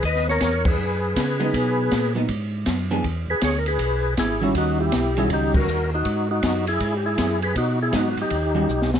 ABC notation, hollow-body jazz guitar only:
X:1
M:4/4
L:1/8
Q:"Swing" 1/4=160
K:G#m
V:1 name="Hollow-body jazz guitar"
z6 z [F,B,D]- | [F,B,D]2 z [F,B,D] z3 [E,B,=DG] | z6 z [D,=G,CF]- | [D,=G,CF]2 z [D,G,CF]3 z2 |
z8 | z2 [F,B,D]2 z [D,=G,CF] z2 |]